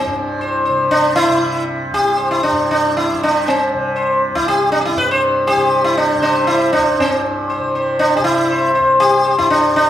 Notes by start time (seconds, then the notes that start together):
Already playing: C2 C3 C4
0.06 G2
0.41 C5
0.65 C3 C5
0.91 D4
1.16 E4
1.29 C3
1.91 C2 G4
2.17 C5
2.31 E4
2.43 D4
2.51 G2
2.71 D4
2.97 E4
3.14 C3
3.23 D4
3.48 C4
3.74 C3
3.96 C5
4.35 C2 E4
4.48 G4
4.72 D4
4.81 G4
4.85 E4
4.96 G2 B4
5.11 C5
5.47 G4 C5
5.55 C3
5.84 E4
5.97 D4
6.16 C3
6.22 D4 C5
6.47 E4 C5
6.73 D4
6.77 C2
6.99 G2 C4
7.50 C5
7.59 C3
7.75 C5
7.99 D4
8.17 C3 G4
8.24 E4
8.50 C5
8.75 C5
8.79 C2
9.00 G4
9.25 C5
9.38 G2 E4
9.50 D4
9.76 D4